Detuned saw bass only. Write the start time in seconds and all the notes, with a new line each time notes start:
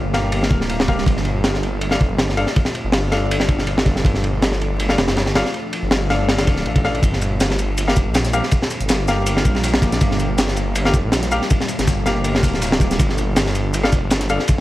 Already playing: G1
0.51 D1
1.06 G1
2.01 F1
2.10 G1
2.84 G1
3.49 G1
4.05 G1
4.98 F1
5.08 G1
5.83 G1
6.47 D1
6.66 A1
7.03 G1
7.97 F1
8.06 A#1
8.81 G1
9.45 A#1
10.01 G1
10.94 F1
11.04 A#1
11.79 G1
12.43 D1
13.00 G1
13.93 F1
14.02 G1